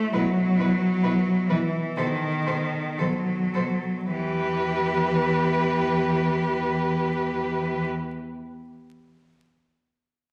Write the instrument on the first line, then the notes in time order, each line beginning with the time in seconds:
cello
Already playing: A3
0.13 B2 F#3 E4 B4
0.57 B2 E4 B4
1.03 B2 E4 B4
1.49 B2 E3 E4 B4
1.97 B2 D#3 A4 C5
2.46 B2 A4 C5
2.98 B2 F#3 A4 C5
3.54 A4 C5
3.58 B2
4.10 E2 E3 G4 B4